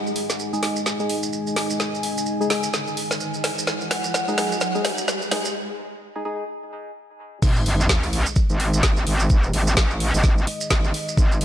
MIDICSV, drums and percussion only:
0, 0, Header, 1, 2, 480
1, 0, Start_track
1, 0, Tempo, 468750
1, 1842, Time_signature, 4, 2, 24, 8
1, 11724, End_track
2, 0, Start_track
2, 0, Title_t, "Drums"
2, 71, Note_on_c, 9, 70, 36
2, 161, Note_on_c, 9, 46, 102
2, 173, Note_off_c, 9, 70, 0
2, 264, Note_off_c, 9, 46, 0
2, 303, Note_on_c, 9, 70, 76
2, 304, Note_on_c, 9, 38, 42
2, 403, Note_off_c, 9, 70, 0
2, 403, Note_on_c, 9, 70, 69
2, 406, Note_off_c, 9, 38, 0
2, 506, Note_off_c, 9, 70, 0
2, 549, Note_on_c, 9, 70, 38
2, 642, Note_on_c, 9, 38, 49
2, 642, Note_on_c, 9, 46, 101
2, 651, Note_off_c, 9, 70, 0
2, 744, Note_off_c, 9, 38, 0
2, 744, Note_off_c, 9, 46, 0
2, 779, Note_on_c, 9, 70, 72
2, 881, Note_on_c, 9, 38, 51
2, 882, Note_off_c, 9, 70, 0
2, 884, Note_on_c, 9, 70, 63
2, 984, Note_off_c, 9, 38, 0
2, 986, Note_off_c, 9, 70, 0
2, 1021, Note_on_c, 9, 70, 38
2, 1121, Note_on_c, 9, 46, 107
2, 1123, Note_off_c, 9, 70, 0
2, 1224, Note_off_c, 9, 46, 0
2, 1258, Note_on_c, 9, 70, 78
2, 1359, Note_off_c, 9, 70, 0
2, 1359, Note_on_c, 9, 70, 62
2, 1461, Note_off_c, 9, 70, 0
2, 1504, Note_on_c, 9, 70, 37
2, 1602, Note_on_c, 9, 38, 55
2, 1602, Note_on_c, 9, 46, 102
2, 1606, Note_off_c, 9, 70, 0
2, 1704, Note_off_c, 9, 38, 0
2, 1704, Note_off_c, 9, 46, 0
2, 1742, Note_on_c, 9, 70, 81
2, 1842, Note_on_c, 9, 38, 57
2, 1844, Note_off_c, 9, 70, 0
2, 1844, Note_on_c, 9, 70, 62
2, 1944, Note_off_c, 9, 38, 0
2, 1946, Note_off_c, 9, 70, 0
2, 1994, Note_on_c, 9, 70, 37
2, 2081, Note_on_c, 9, 46, 106
2, 2096, Note_off_c, 9, 70, 0
2, 2184, Note_off_c, 9, 46, 0
2, 2228, Note_on_c, 9, 70, 86
2, 2315, Note_off_c, 9, 70, 0
2, 2315, Note_on_c, 9, 70, 68
2, 2417, Note_off_c, 9, 70, 0
2, 2472, Note_on_c, 9, 70, 42
2, 2562, Note_on_c, 9, 38, 63
2, 2562, Note_on_c, 9, 46, 105
2, 2574, Note_off_c, 9, 70, 0
2, 2664, Note_off_c, 9, 38, 0
2, 2664, Note_off_c, 9, 46, 0
2, 2695, Note_on_c, 9, 70, 84
2, 2798, Note_off_c, 9, 70, 0
2, 2801, Note_on_c, 9, 70, 66
2, 2802, Note_on_c, 9, 38, 66
2, 2903, Note_off_c, 9, 70, 0
2, 2904, Note_off_c, 9, 38, 0
2, 2942, Note_on_c, 9, 70, 36
2, 3042, Note_on_c, 9, 46, 109
2, 3045, Note_off_c, 9, 70, 0
2, 3144, Note_off_c, 9, 46, 0
2, 3184, Note_on_c, 9, 38, 59
2, 3189, Note_on_c, 9, 70, 85
2, 3279, Note_off_c, 9, 70, 0
2, 3279, Note_on_c, 9, 70, 63
2, 3286, Note_off_c, 9, 38, 0
2, 3381, Note_off_c, 9, 70, 0
2, 3419, Note_on_c, 9, 70, 40
2, 3521, Note_off_c, 9, 70, 0
2, 3522, Note_on_c, 9, 38, 70
2, 3522, Note_on_c, 9, 46, 109
2, 3624, Note_off_c, 9, 38, 0
2, 3624, Note_off_c, 9, 46, 0
2, 3671, Note_on_c, 9, 70, 88
2, 3758, Note_off_c, 9, 70, 0
2, 3758, Note_on_c, 9, 70, 65
2, 3761, Note_on_c, 9, 38, 72
2, 3861, Note_off_c, 9, 70, 0
2, 3864, Note_off_c, 9, 38, 0
2, 3901, Note_on_c, 9, 70, 39
2, 4002, Note_on_c, 9, 38, 75
2, 4002, Note_on_c, 9, 46, 110
2, 4003, Note_off_c, 9, 70, 0
2, 4105, Note_off_c, 9, 38, 0
2, 4105, Note_off_c, 9, 46, 0
2, 4136, Note_on_c, 9, 70, 81
2, 4238, Note_off_c, 9, 70, 0
2, 4242, Note_on_c, 9, 38, 80
2, 4245, Note_on_c, 9, 70, 76
2, 4344, Note_off_c, 9, 38, 0
2, 4348, Note_off_c, 9, 70, 0
2, 4386, Note_on_c, 9, 70, 42
2, 4483, Note_on_c, 9, 38, 82
2, 4483, Note_on_c, 9, 46, 114
2, 4488, Note_off_c, 9, 70, 0
2, 4585, Note_off_c, 9, 38, 0
2, 4585, Note_off_c, 9, 46, 0
2, 4628, Note_on_c, 9, 70, 79
2, 4717, Note_off_c, 9, 70, 0
2, 4717, Note_on_c, 9, 70, 72
2, 4723, Note_on_c, 9, 38, 81
2, 4819, Note_off_c, 9, 70, 0
2, 4825, Note_off_c, 9, 38, 0
2, 4864, Note_on_c, 9, 70, 39
2, 4962, Note_on_c, 9, 38, 85
2, 4962, Note_on_c, 9, 46, 114
2, 4967, Note_off_c, 9, 70, 0
2, 5065, Note_off_c, 9, 38, 0
2, 5065, Note_off_c, 9, 46, 0
2, 5097, Note_on_c, 9, 70, 91
2, 5200, Note_off_c, 9, 70, 0
2, 5202, Note_on_c, 9, 38, 88
2, 5202, Note_on_c, 9, 70, 70
2, 5304, Note_off_c, 9, 70, 0
2, 5305, Note_off_c, 9, 38, 0
2, 5343, Note_on_c, 9, 70, 41
2, 5442, Note_on_c, 9, 38, 93
2, 5442, Note_on_c, 9, 46, 108
2, 5445, Note_off_c, 9, 70, 0
2, 5544, Note_off_c, 9, 38, 0
2, 5544, Note_off_c, 9, 46, 0
2, 5581, Note_on_c, 9, 70, 85
2, 5684, Note_off_c, 9, 70, 0
2, 7602, Note_on_c, 9, 36, 119
2, 7604, Note_on_c, 9, 49, 105
2, 7605, Note_on_c, 9, 70, 63
2, 7705, Note_off_c, 9, 36, 0
2, 7706, Note_off_c, 9, 49, 0
2, 7707, Note_off_c, 9, 70, 0
2, 7742, Note_on_c, 9, 70, 42
2, 7844, Note_on_c, 9, 46, 109
2, 7845, Note_off_c, 9, 70, 0
2, 7947, Note_off_c, 9, 46, 0
2, 7991, Note_on_c, 9, 70, 72
2, 8083, Note_off_c, 9, 70, 0
2, 8083, Note_on_c, 9, 36, 105
2, 8083, Note_on_c, 9, 38, 127
2, 8083, Note_on_c, 9, 70, 67
2, 8185, Note_off_c, 9, 36, 0
2, 8186, Note_off_c, 9, 38, 0
2, 8186, Note_off_c, 9, 70, 0
2, 8222, Note_on_c, 9, 70, 37
2, 8227, Note_on_c, 9, 46, 57
2, 8324, Note_off_c, 9, 46, 0
2, 8324, Note_on_c, 9, 46, 108
2, 8325, Note_off_c, 9, 70, 0
2, 8427, Note_off_c, 9, 46, 0
2, 8458, Note_on_c, 9, 70, 78
2, 8557, Note_off_c, 9, 70, 0
2, 8557, Note_on_c, 9, 70, 62
2, 8563, Note_on_c, 9, 36, 122
2, 8659, Note_off_c, 9, 70, 0
2, 8665, Note_off_c, 9, 36, 0
2, 8700, Note_on_c, 9, 70, 42
2, 8803, Note_off_c, 9, 70, 0
2, 8804, Note_on_c, 9, 46, 107
2, 8907, Note_off_c, 9, 46, 0
2, 8944, Note_on_c, 9, 70, 77
2, 9042, Note_off_c, 9, 70, 0
2, 9042, Note_on_c, 9, 70, 63
2, 9043, Note_on_c, 9, 36, 106
2, 9043, Note_on_c, 9, 38, 122
2, 9144, Note_off_c, 9, 70, 0
2, 9145, Note_off_c, 9, 36, 0
2, 9145, Note_off_c, 9, 38, 0
2, 9181, Note_on_c, 9, 70, 42
2, 9284, Note_off_c, 9, 70, 0
2, 9284, Note_on_c, 9, 46, 109
2, 9387, Note_off_c, 9, 46, 0
2, 9416, Note_on_c, 9, 70, 72
2, 9518, Note_off_c, 9, 70, 0
2, 9519, Note_on_c, 9, 70, 74
2, 9523, Note_on_c, 9, 36, 123
2, 9621, Note_off_c, 9, 70, 0
2, 9625, Note_off_c, 9, 36, 0
2, 9660, Note_on_c, 9, 70, 41
2, 9762, Note_off_c, 9, 70, 0
2, 9764, Note_on_c, 9, 46, 112
2, 9866, Note_off_c, 9, 46, 0
2, 9903, Note_on_c, 9, 70, 81
2, 10003, Note_off_c, 9, 70, 0
2, 10003, Note_on_c, 9, 36, 109
2, 10003, Note_on_c, 9, 38, 126
2, 10003, Note_on_c, 9, 70, 72
2, 10105, Note_off_c, 9, 36, 0
2, 10105, Note_off_c, 9, 38, 0
2, 10106, Note_off_c, 9, 70, 0
2, 10144, Note_on_c, 9, 70, 39
2, 10244, Note_on_c, 9, 46, 114
2, 10247, Note_off_c, 9, 70, 0
2, 10346, Note_off_c, 9, 46, 0
2, 10386, Note_on_c, 9, 70, 77
2, 10387, Note_on_c, 9, 46, 64
2, 10479, Note_off_c, 9, 70, 0
2, 10479, Note_on_c, 9, 70, 62
2, 10483, Note_on_c, 9, 36, 122
2, 10483, Note_on_c, 9, 38, 40
2, 10489, Note_off_c, 9, 46, 0
2, 10581, Note_off_c, 9, 70, 0
2, 10585, Note_off_c, 9, 36, 0
2, 10585, Note_off_c, 9, 38, 0
2, 10627, Note_on_c, 9, 70, 43
2, 10723, Note_on_c, 9, 46, 115
2, 10730, Note_off_c, 9, 70, 0
2, 10826, Note_off_c, 9, 46, 0
2, 10862, Note_on_c, 9, 70, 77
2, 10959, Note_off_c, 9, 70, 0
2, 10959, Note_on_c, 9, 70, 67
2, 10962, Note_on_c, 9, 38, 127
2, 10963, Note_on_c, 9, 36, 106
2, 11062, Note_off_c, 9, 70, 0
2, 11064, Note_off_c, 9, 38, 0
2, 11065, Note_off_c, 9, 36, 0
2, 11103, Note_on_c, 9, 70, 41
2, 11203, Note_on_c, 9, 46, 110
2, 11205, Note_off_c, 9, 70, 0
2, 11306, Note_off_c, 9, 46, 0
2, 11350, Note_on_c, 9, 70, 85
2, 11442, Note_on_c, 9, 36, 127
2, 11447, Note_off_c, 9, 70, 0
2, 11447, Note_on_c, 9, 70, 74
2, 11545, Note_off_c, 9, 36, 0
2, 11550, Note_off_c, 9, 70, 0
2, 11589, Note_on_c, 9, 70, 42
2, 11683, Note_on_c, 9, 46, 118
2, 11691, Note_off_c, 9, 70, 0
2, 11724, Note_off_c, 9, 46, 0
2, 11724, End_track
0, 0, End_of_file